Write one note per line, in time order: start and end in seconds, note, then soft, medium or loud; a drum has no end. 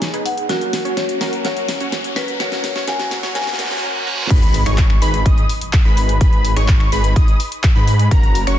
0.00 0.51 G#3 medium
0.00 0.51 B3 medium
0.00 0.11 D#4 medium
0.00 0.51 D#4 medium
0.00 0.11 G#4 medium
0.00 0.51 G#4 loud
0.00 0.11 C#5 medium
0.00 0.28 G#5 loud
0.00 snare medium
0.00 closed hi-hat medium
0.00 riser medium
0.14 0.47 D#4 medium
0.14 0.47 G#4 medium
0.14 0.47 B4 loud
0.14 closed hi-hat soft
0.26 0.36 F#5 loud
0.26 open hi-hat loud
0.38 closed hi-hat soft
0.48 1.17 F#3 medium
0.48 1.18 A#3 medium
0.48 0.82 C#4 medium
0.48 1.18 C#4 medium
0.48 0.82 F#4 medium
0.48 0.98 F#4 loud
0.48 1.19 F#4 loud
0.48 0.82 A#4 medium
0.48 snare medium
0.48 closed hi-hat medium
0.61 closed hi-hat soft
0.73 snare medium
0.73 open hi-hat loud
0.85 1.18 C#4 medium
0.85 1.18 F#4 medium
0.85 1.18 C#5 medium
0.85 closed hi-hat soft
0.97 1.44 C#5 loud
0.97 snare medium
0.97 closed hi-hat medium
1.09 closed hi-hat soft
1.20 1.42 F#3 medium
1.20 1.43 A#3 medium
1.20 1.42 C#4 medium
1.20 1.43 C#4 medium
1.20 1.42 F#4 medium
1.20 1.43 F#4 medium
1.20 1.42 A#4 loud
1.20 snare medium
1.20 open hi-hat loud
1.33 closed hi-hat soft
1.43 2.13 F#3 loud
1.43 2.13 A#3 medium
1.43 1.78 C#4 medium
1.43 2.13 C#4 medium
1.43 1.78 F#4 medium
1.43 2.14 F#4 loud
1.43 1.78 A#4 medium
1.43 2.18 C#5 loud
1.43 snare medium
1.43 closed hi-hat medium
1.57 closed hi-hat soft
1.68 snare medium
1.68 open hi-hat loud
1.80 2.13 C#4 medium
1.80 2.13 F#4 medium
1.80 2.13 C#5 medium
1.80 closed hi-hat soft
1.92 snare medium
1.92 closed hi-hat medium
2.04 closed hi-hat soft
2.15 2.37 F#3 medium
2.15 2.38 A#3 medium
2.15 2.37 C#4 medium
2.15 2.38 C#4 medium
2.15 2.37 F#4 medium
2.15 2.39 F#4 medium
2.15 2.37 A#4 loud
2.15 2.27 B4 medium
2.15 snare medium
2.15 open hi-hat medium
2.28 closed hi-hat soft
2.39 2.85 F#3 medium
2.39 2.85 A#3 medium
2.39 2.73 C#4 medium
2.39 2.86 C#4 medium
2.39 2.73 F#4 medium
2.39 2.86 F#4 loud
2.39 2.73 A#4 medium
2.39 2.84 C#5 loud
2.39 snare medium
2.39 closed hi-hat medium
2.52 snare medium
2.52 closed hi-hat soft
2.64 snare medium
2.64 open hi-hat loud
2.76 2.86 C#4 medium
2.76 2.86 F#4 medium
2.76 2.86 C#5 medium
2.76 snare medium
2.76 closed hi-hat soft
2.86 3.33 F#3 loud
2.86 3.33 A#3 medium
2.86 3.20 C#4 medium
2.86 3.33 C#4 loud
2.86 3.20 F#4 medium
2.86 3.34 F#4 loud
2.86 3.20 A#4 medium
2.86 3.34 G#5 loud
2.86 snare medium
2.86 closed hi-hat medium
2.99 snare medium
2.99 closed hi-hat soft
3.11 snare medium
3.11 open hi-hat loud
3.23 3.33 C#4 medium
3.23 3.33 F#4 medium
3.23 3.33 C#5 loud
3.23 snare medium
3.23 closed hi-hat soft
3.34 3.56 F#3 loud
3.34 3.57 A#3 medium
3.34 3.57 C#4 medium
3.34 3.57 F#4 medium
3.34 3.58 F#4 loud
3.34 3.57 A#4 medium
3.34 3.79 G#5 medium
3.34 snare loud
3.34 closed hi-hat medium
3.34 reverse cymbal medium
3.41 snare medium
3.47 snare loud
3.47 closed hi-hat soft
3.53 snare loud
3.58 3.80 F#3 loud
3.58 3.81 A#3 medium
3.58 3.81 C#4 medium
3.58 3.81 C#4 loud
3.58 3.81 F#4 medium
3.58 3.81 F#4 loud
3.58 3.81 A#4 medium
3.58 snare loud
3.58 open hi-hat loud
3.65 snare medium
3.71 snare medium
3.71 closed hi-hat soft
3.77 snare medium
3.83 4.05 C#4 medium
3.83 4.05 F#4 medium
3.83 4.05 A#4 loud
4.07 4.29 C#4 medium
4.07 4.29 F#4 medium
4.07 4.29 A#4 medium
4.30 4.64 G#1 medium
4.30 4.63 D#4 medium
4.30 4.63 G#4 medium
4.30 4.63 B5 medium
4.30 kick loud
4.30 closed hi-hat medium
4.30 crash loud
4.30 impact medium
4.42 closed hi-hat soft
4.54 open hi-hat loud
4.66 4.99 G#1 loud
4.66 4.99 D#4 medium
4.66 4.99 G#4 medium
4.66 4.99 C#5 loud
4.66 4.99 C#6 medium
4.66 finger snap medium
4.66 closed hi-hat medium
4.78 kick loud
4.78 clap loud
4.78 closed hi-hat medium
4.90 finger snap medium
5.02 5.23 G#1 medium
5.02 5.23 D#4 loud
5.02 5.23 G#4 medium
5.02 5.23 B4 loud
5.02 5.23 B5 loud
5.02 open hi-hat medium
5.14 closed hi-hat medium
5.26 5.44 G#1 loud
5.26 5.47 D#4 medium
5.26 5.47 G#4 medium
5.26 5.47 D#5 medium
5.26 5.47 D#6 medium
5.26 kick loud
5.26 closed hi-hat medium
5.38 closed hi-hat soft
5.49 open hi-hat loud
5.61 closed hi-hat medium
5.73 kick loud
5.73 clap loud
5.73 closed hi-hat medium
5.85 6.18 G#1 medium
5.85 6.18 D#4 medium
5.85 6.18 G#4 medium
5.85 6.18 B4 medium
5.85 6.18 B5 medium
5.97 open hi-hat loud
6.09 closed hi-hat medium
6.21 6.54 G#1 medium
6.21 6.54 D#4 medium
6.21 6.54 G#4 medium
6.21 6.54 B4 medium
6.21 6.54 B5 medium
6.21 kick loud
6.21 closed hi-hat medium
6.33 closed hi-hat soft
6.45 open hi-hat loud
6.57 6.90 G#1 medium
6.57 6.89 D#4 medium
6.57 6.89 G#4 medium
6.57 6.89 C#5 medium
6.57 6.89 C#6 medium
6.57 finger snap medium
6.57 closed hi-hat medium
6.68 kick loud
6.68 clap loud
6.68 closed hi-hat medium
6.80 finger snap medium
6.92 7.14 G#1 medium
6.92 7.13 D#4 loud
6.92 7.13 G#4 medium
6.92 7.13 B4 loud
6.92 7.13 B5 loud
6.92 open hi-hat medium
7.04 closed hi-hat medium
7.16 7.35 G#1 loud
7.16 7.37 D#4 medium
7.16 7.37 D#5 medium
7.16 7.37 D#6 medium
7.16 kick loud
7.16 closed hi-hat medium
7.28 closed hi-hat soft
7.40 open hi-hat loud
7.52 closed hi-hat medium
7.63 kick loud
7.63 clap loud
7.63 closed hi-hat medium
7.75 8.09 G#2 loud
7.75 8.08 D#4 medium
7.75 8.08 G#4 medium
7.75 8.08 B4 medium
7.75 8.08 B5 medium
7.88 open hi-hat loud
7.99 closed hi-hat medium
8.11 8.45 F#1 loud
8.11 8.44 C#4 medium
8.11 8.44 F#4 medium
8.11 8.44 A#4 medium
8.11 8.44 A#5 loud
8.11 kick loud
8.11 closed hi-hat medium
8.23 closed hi-hat soft
8.35 open hi-hat loud
8.47 8.59 F#1 loud
8.47 8.59 C#4 medium
8.47 8.59 F#4 medium
8.47 8.59 C#5 medium
8.47 8.59 C#6 medium
8.47 finger snap medium
8.47 closed hi-hat medium